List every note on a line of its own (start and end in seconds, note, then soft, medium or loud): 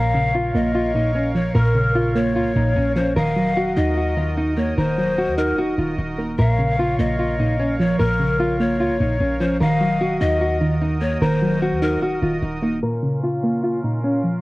0.00 0.52 A#1 loud
0.00 0.94 A#2 loud
0.00 0.32 A#4 loud
0.00 9.57 A#4 medium
0.00 3.13 C#5 medium
0.00 0.51 F5 loud
0.00 3.13 F5 medium
0.00 3.13 C#6 medium
0.14 1.15 C#3 medium
0.34 0.72 F4 medium
0.54 1.51 A#1 loud
0.54 1.55 A#3 medium
0.54 1.31 D#5 medium
0.75 0.90 F4 medium
0.95 1.54 A#2 medium
0.95 1.11 D#4 medium
1.15 1.31 C#4 medium
1.35 2.36 F3 medium
1.35 1.54 C#5 medium
1.55 2.37 A#1 loud
1.55 2.55 A#2 loud
1.55 1.93 A#4 loud
1.55 2.12 A#4 loud
1.75 2.76 C#3 medium
1.95 2.33 F4 medium
2.15 3.16 A#3 medium
2.15 2.92 C#5 loud
2.36 2.47 C#2 loud
2.36 2.51 F4 medium
2.46 2.55 A#1 loud
2.56 2.75 A#1 loud
2.56 3.16 A#2 medium
2.56 2.72 D#4 medium
2.76 3.15 A#1 loud
2.76 2.92 C#4 medium
2.96 3.16 F3 medium
2.96 3.12 C#4 medium
2.96 3.15 C5 medium
3.16 3.74 D#1 loud
3.16 4.16 D#3 loud
3.16 6.35 F#4 medium
3.16 3.54 A#4 loud
3.16 6.35 D#5 medium
3.16 3.73 F5 loud
3.16 6.35 D#6 medium
3.36 4.37 F#3 medium
3.57 3.95 F#4 medium
3.77 4.73 D#2 loud
3.77 4.77 D#4 medium
3.77 4.35 D#5 medium
3.97 4.13 F#4 medium
4.17 4.76 D#3 medium
4.17 4.33 F4 medium
4.37 4.53 D#4 medium
4.57 5.58 A#3 medium
4.57 4.76 C#5 medium
4.77 5.29 D#1 loud
4.77 5.77 D#3 loud
4.77 5.15 A#4 loud
4.77 5.34 C5 loud
4.98 5.98 F#3 medium
5.18 5.56 F#4 medium
5.28 5.54 D#2 loud
5.38 6.38 D#4 medium
5.38 5.57 A#4 loud
5.53 5.77 D#1 loud
5.58 5.74 F#4 medium
5.78 5.97 D#1 loud
5.78 6.38 D#3 medium
5.78 5.94 F4 medium
5.98 6.37 D#1 loud
5.98 6.14 D#4 medium
6.18 6.38 A#3 medium
6.18 6.34 D#4 medium
6.38 6.96 A#1 loud
6.38 7.38 A#2 loud
6.38 6.76 A#4 loud
6.38 9.57 C#5 medium
6.38 9.57 F5 medium
6.38 6.95 F5 loud
6.38 9.57 C#6 medium
6.58 7.59 C#3 medium
6.79 7.17 F4 medium
6.99 7.96 A#1 loud
6.99 8.00 A#3 medium
6.99 7.75 D#5 medium
7.19 7.35 F4 medium
7.39 7.98 A#2 medium
7.39 7.55 D#4 medium
7.59 7.75 C#4 loud
7.79 8.80 F3 medium
7.79 7.99 C#5 medium
7.99 8.82 A#1 loud
7.99 8.99 A#2 loud
7.99 8.37 A#4 loud
7.99 8.56 A#4 loud
8.19 9.20 C#3 medium
8.40 8.78 F4 medium
8.60 9.61 A#3 medium
8.60 9.36 C#5 loud
8.80 8.92 C#2 loud
8.80 8.96 F4 medium
8.90 9.00 A#1 loud
9.00 9.20 A#1 loud
9.00 9.61 A#2 medium
9.00 9.16 D#4 medium
9.20 9.59 A#1 loud
9.20 9.36 C#4 medium
9.40 9.60 F3 medium
9.40 9.56 C#4 medium
9.40 9.60 C5 medium
9.60 10.19 D#1 loud
9.60 10.60 D#3 loud
9.60 12.80 F#4 medium
9.60 9.98 A#4 loud
9.60 12.80 A#4 medium
9.60 12.80 D#5 medium
9.60 10.17 F5 loud
9.60 12.80 D#6 medium
9.81 10.81 F#3 medium
10.01 10.39 F#4 medium
10.21 11.18 D#2 loud
10.21 11.22 D#4 medium
10.21 10.73 D#5 medium
10.41 10.57 F#4 medium
10.61 11.20 D#3 medium
10.61 10.77 F4 medium
10.82 10.97 D#4 medium
11.01 12.02 A#3 medium
11.01 11.21 C#5 medium
11.22 11.73 D#1 loud
11.22 12.21 D#3 loud
11.22 11.60 A#4 loud
11.22 11.78 C5 loud
11.42 12.43 F#3 medium
11.62 12.00 F#4 medium
11.72 11.99 D#2 loud
11.82 12.83 D#4 medium
11.82 12.01 A#4 loud
11.97 12.21 D#1 loud
12.02 12.18 F#4 medium
12.22 12.42 D#1 loud
12.22 12.83 D#3 medium
12.22 12.38 F4 medium
12.42 12.81 D#1 loud
12.42 12.58 D#4 medium
12.62 12.83 A#3 medium
12.62 12.78 D#4 medium
12.83 13.82 A#2 medium
12.83 14.41 C#4 medium
12.83 14.41 F4 medium
12.83 13.21 A#4 loud
12.83 14.41 A#4 medium
12.83 14.41 F5 medium
13.03 14.03 C#3 medium
13.23 13.61 F4 medium
13.43 14.41 A#3 medium
13.63 13.79 F4 medium
13.83 14.41 A#2 medium
13.83 13.99 D#4 medium
14.04 14.19 C#4 medium
14.24 14.41 F3 medium